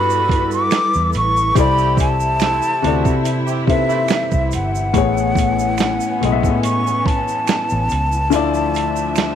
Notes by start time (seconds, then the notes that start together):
Already playing: G2 G3 B3 D4 E4 F#4 A4 B4 D5 B5
0.10 shaker
0.29 kick, closed hi-hat
0.51 D6, shaker
0.71 finger snap, snare, closed hi-hat, shaker
0.94 E2, shaker
1.13 A1, closed hi-hat, shaker
1.17 C#6
1.37 shaker
1.55 C2 C3 E3 C4 E4 G4 A4, kick, closed hi-hat, shaker
1.60 D5 B5
1.78 shaker
1.97 A5, kick, closed hi-hat, shaker
2.20 shaker
2.40 A3 C4 E4, finger snap, snare, closed hi-hat, shaker
2.62 shaker
2.82 D2 C3 B3 C4 D4 E4 F#4, closed hi-hat
2.86 A4 D5
3.05 C3, kick, shaker
3.25 closed hi-hat, shaker
3.47 C4 E4 G4, shaker
3.67 C3 C4 D#4 A4 E5, kick, closed hi-hat
3.71 B4
3.76 E4
3.89 A3 C4 E4, shaker
4.08 finger snap, snare, closed hi-hat, shaker
4.32 C2, kick, shaker
4.51 G1 F#5, closed hi-hat, shaker
4.75 shaker
4.93 A1 A2 A3 B3 C#4 G#4, kick, closed hi-hat, shaker
4.98 C#5
5.17 shaker
5.35 kick, closed hi-hat, shaker
5.59 shaker
5.78 finger snap, snare, closed hi-hat, shaker
6.00 shaker
6.21 B1 A2 G#3 A3 B3, closed hi-hat
6.25 D#5
6.32 E5
6.43 A2, kick, shaker
6.63 C#6, closed hi-hat, shaker
6.87 shaker
7.06 A5, kick, closed hi-hat
7.28 shaker
7.47 finger snap, snare, closed hi-hat, shaker
7.69 A1, shaker
7.89 C#2, closed hi-hat, shaker
8.12 shaker
8.30 D2 D3 F3 A3 D4 E4 F4 E5, closed hi-hat, shaker
8.35 D5
8.54 shaker
8.74 closed hi-hat, shaker
8.96 shaker
9.16 finger snap, snare, closed hi-hat, shaker